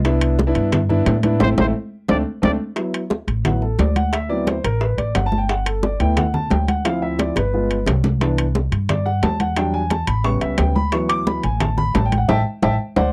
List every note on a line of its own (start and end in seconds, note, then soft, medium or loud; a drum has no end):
0.00 0.51 C2 medium
0.05 0.35 B3 medium
0.05 0.35 D4 medium
0.05 0.35 E4 loud
0.05 high bongo medium
0.05 high timbale medium
0.21 high conga soft
0.21 high timbale loud
0.39 high bongo medium
0.39 high conga medium
0.39 low timbale medium
0.47 0.77 B3 medium
0.47 0.77 D4 medium
0.47 0.77 E4 loud
0.55 1.04 G2 loud
0.55 high bongo soft
0.55 high conga soft
0.55 high timbale medium
0.72 high bongo medium
0.72 high conga soft
0.72 low conga medium
0.72 high timbale medium
0.89 1.14 B3 medium
0.89 1.14 D4 medium
0.89 1.14 E4 loud
0.89 high bongo soft
0.89 high conga soft
0.89 low conga medium
1.06 1.39 A2 medium
1.06 high bongo soft
1.06 low bongo medium
1.06 high conga medium
1.06 high timbale medium
1.06 low timbale medium
1.23 1.41 B3 medium
1.23 1.41 D4 medium
1.23 1.39 E4 loud
1.23 high bongo soft
1.23 high conga medium
1.23 high timbale medium
1.40 1.54 A1 medium
1.40 1.52 A3 medium
1.40 1.52 C4 loud
1.40 1.52 E4 loud
1.40 1.50 C5 loud
1.40 low bongo medium
1.40 high conga loud
1.40 high timbale loud
1.58 1.71 A1 medium
1.58 1.69 A3 medium
1.58 1.69 C4 medium
1.58 1.69 E4 loud
1.58 1.67 C5 medium
1.58 low bongo medium
1.58 high conga loud
1.58 high timbale loud
2.08 2.22 D2 loud
2.08 2.20 A3 medium
2.08 2.20 C4 medium
2.08 2.20 D4 medium
2.08 2.18 D5 medium
2.08 low bongo medium
2.08 high conga medium
2.08 high timbale loud
2.42 2.56 D2 loud
2.42 2.53 A3 medium
2.42 2.53 C4 medium
2.42 2.53 D4 medium
2.42 2.52 D5 loud
2.42 low bongo loud
2.42 high conga loud
2.42 high timbale medium
2.76 2.99 F#3 medium
2.76 2.99 B3 soft
2.76 3.00 E4 medium
2.76 high bongo medium
2.76 high conga soft
2.76 high timbale medium
2.94 high conga soft
2.94 high timbale medium
3.10 high bongo medium
3.10 high conga medium
3.10 low timbale medium
3.28 3.75 A1 medium
3.28 high bongo soft
3.28 high conga soft
3.28 high timbale medium
3.45 3.60 F#3 soft
3.45 3.60 B3 soft
3.45 3.61 E4 medium
3.45 3.62 F#5 medium
3.45 high bongo medium
3.45 high conga soft
3.45 low conga medium
3.45 high timbale medium
3.62 3.79 A4 medium
3.62 high bongo soft
3.62 high conga soft
3.79 4.58 D2 medium
3.79 3.96 D5 medium
3.79 high bongo soft
3.79 low bongo medium
3.79 high conga medium
3.79 high timbale medium
3.79 low timbale medium
3.96 4.13 F#5 loud
3.96 high bongo soft
3.96 high conga medium
3.96 high timbale medium
4.13 4.30 E5 medium
4.13 high bongo medium
4.13 high timbale medium
4.29 4.52 F#3 medium
4.29 4.52 B3 medium
4.29 4.53 C4 medium
4.29 4.53 E4 medium
4.29 4.46 D5 medium
4.29 high conga soft
4.47 4.64 C5 medium
4.47 high bongo medium
4.47 high conga loud
4.47 high timbale medium
4.47 low timbale medium
4.64 4.96 A1 medium
4.64 4.81 A#4 medium
4.64 high bongo soft
4.64 high conga soft
4.64 high timbale medium
4.81 4.98 B4 medium
4.81 high bongo medium
4.81 high conga soft
4.98 5.14 A1 medium
4.98 5.14 D5 medium
4.98 high bongo soft
4.98 high conga soft
4.98 high timbale medium
5.15 5.94 G1 medium
5.15 5.26 F#5 medium
5.15 high bongo soft
5.15 low bongo medium
5.15 high conga soft
5.15 high timbale loud
5.15 low timbale medium
5.26 5.37 A5 loud
5.32 high bongo soft
5.32 high conga medium
5.38 5.49 G5 medium
5.49 5.66 F#5 medium
5.49 high bongo medium
5.49 high conga soft
5.49 high timbale medium
5.66 5.83 A4 medium
5.66 high conga soft
5.66 high timbale loud
5.83 6.00 D5 medium
5.83 high bongo medium
5.83 high conga medium
5.83 low timbale medium
5.99 6.47 D2 medium
5.99 6.22 A3 medium
5.99 6.23 B3 medium
5.99 6.23 E4 medium
5.99 6.17 G5 medium
5.99 high bongo soft
5.99 high conga soft
5.99 high timbale medium
6.17 6.34 F#5 medium
6.17 high bongo medium
6.17 high conga soft
6.17 low conga medium
6.17 high timbale medium
6.34 6.50 A5 medium
6.34 high bongo soft
6.34 high conga soft
6.34 low conga medium
6.50 7.30 D2 medium
6.50 6.67 G5 medium
6.50 high bongo soft
6.50 low bongo medium
6.50 high conga medium
6.50 high timbale medium
6.50 low timbale medium
6.68 6.85 F#5 medium
6.68 high bongo soft
6.68 high conga medium
6.68 high timbale medium
6.85 7.33 F3 medium
6.85 7.33 C4 medium
6.85 7.34 E4 medium
6.85 7.02 F5 medium
6.85 high bongo medium
6.85 high conga soft
6.85 high timbale medium
7.02 7.19 E5 medium
7.02 high conga soft
7.19 7.36 D5 medium
7.19 high bongo medium
7.19 high conga medium
7.19 high timbale medium
7.19 low timbale medium
7.36 7.84 G1 medium
7.36 7.84 B4 medium
7.36 high bongo medium
7.36 high conga soft
7.36 high timbale medium
7.53 7.76 G#3 medium
7.53 7.76 B3 medium
7.53 7.76 F4 medium
7.53 high conga soft
7.70 high conga soft
7.70 high timbale medium
7.86 8.66 C2 medium
7.86 low bongo loud
7.86 high timbale loud
7.86 low timbale medium
8.04 low bongo medium
8.04 high conga medium
8.21 8.43 E3 medium
8.21 8.44 B3 medium
8.21 8.44 D4 medium
8.21 high bongo medium
8.21 high conga soft
8.21 high timbale medium
8.38 high conga soft
8.38 high timbale medium
8.55 high bongo medium
8.55 high conga medium
8.55 low timbale medium
8.72 9.19 G2 medium
8.72 high bongo soft
8.72 high conga soft
8.72 high timbale medium
8.89 9.06 D5 medium
8.89 high bongo medium
8.89 high conga soft
8.89 low conga medium
8.89 high timbale medium
9.06 9.22 F#5 medium
9.06 high bongo soft
9.06 high conga soft
9.23 10.02 E2 medium
9.23 9.39 A5 medium
9.23 high bongo soft
9.23 low bongo medium
9.23 high conga medium
9.23 high timbale medium
9.23 low timbale medium
9.40 9.57 F#5 medium
9.40 high bongo soft
9.40 high conga medium
9.40 high timbale medium
9.56 9.79 F#3 medium
9.56 9.79 G3 medium
9.56 9.80 D4 medium
9.56 9.74 G5 medium
9.56 high bongo medium
9.56 high conga soft
9.56 high timbale medium
9.74 9.90 G#5 loud
9.74 high conga soft
9.90 10.07 A5 medium
9.90 high bongo medium
9.90 high conga medium
9.90 high timbale medium
9.90 low timbale medium
10.07 10.39 A1 loud
10.07 10.24 B5 medium
10.07 high bongo soft
10.07 high conga soft
10.07 high timbale loud
10.24 10.73 C#3 medium
10.24 10.73 G3 medium
10.24 10.73 B3 medium
10.24 10.41 C#6 loud
10.24 high bongo medium
10.24 high conga soft
10.41 10.57 C#2 medium
10.41 10.58 E5 medium
10.41 high bongo soft
10.41 high conga soft
10.41 high timbale medium
10.58 11.38 D2 medium
10.58 10.75 G5 medium
10.58 high bongo soft
10.58 low bongo medium
10.58 high conga soft
10.58 high timbale loud
10.58 low timbale medium
10.76 10.92 B5 loud
10.76 high bongo soft
10.76 high conga medium
10.92 11.41 E3 medium
10.92 11.41 F#3 medium
10.92 11.41 B3 medium
10.92 11.09 C#6 medium
10.92 high bongo medium
10.92 high conga soft
10.92 high timbale medium
11.09 11.26 D6 loud
11.09 high conga soft
11.09 high timbale loud
11.27 11.43 B5 medium
11.27 high bongo medium
11.27 high conga medium
11.27 low timbale medium
11.43 11.91 A1 medium
11.43 11.60 G#5 medium
11.43 high bongo soft
11.43 high conga soft
11.43 high timbale medium
11.60 11.77 A5 medium
11.60 high bongo medium
11.60 high conga soft
11.60 low conga medium
11.60 high timbale medium
11.78 11.94 B5 loud
11.78 high bongo soft
11.78 high conga soft
11.78 low conga medium
11.94 12.26 A1 medium
11.94 12.05 A5 medium
11.94 high bongo soft
11.94 low bongo medium
11.94 high conga medium
11.94 high timbale medium
11.94 low timbale medium
12.05 12.17 G5 medium
12.12 high bongo soft
12.12 high conga medium
12.12 high timbale medium
12.18 12.28 F#5 medium
12.28 12.41 A1 loud
12.28 12.39 E5 loud
12.28 12.39 G5 loud
12.28 12.40 A5 loud
12.28 low bongo loud
12.28 high conga loud
12.28 high timbale medium
12.62 12.75 A1 loud
12.62 12.74 E5 medium
12.62 12.74 G5 medium
12.62 12.74 A5 medium
12.62 low bongo loud
12.62 high conga loud
12.62 high timbale loud
12.96 13.09 D2 loud
12.96 13.07 C5 loud
12.96 13.08 D5 medium
12.96 13.08 F#5 loud
12.96 low bongo loud
12.96 high conga loud
12.96 high timbale loud